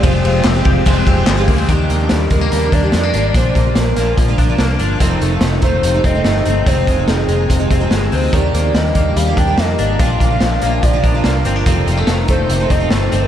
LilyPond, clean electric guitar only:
\new Staff \with { instrumentName = "Clean electric guitar" } { \time 4/4 \key ees \major \tempo 4 = 144 <f aes c' g'>8 aes8 c'8 g'8 aes8 c'8 aes8 bes16 c'16 | <ees d'>8 bes8 g8 aes16 bes16 g8 d'8 aes16 bes16 d'8 | <bes, d'>8 bes8 f8 bes8 f8 d'8 bes8 d'8 | <f, c'>8 a8 ees8 a8 c8 c'8 a8 c'8 |
<f, c'>8 aes8 ees8 aes8 c8 c'8 aes8 c'8 | ees8 bes8 g8 bes8 g8 d'8 bes8 d'8 | <bes, d'>8 bes8 f8 bes8 f8 d'8 bes8 c'16 d'16 | <f, c'>8 g16 a16 ees8 a8 c8 c'8 a8 c'8 | }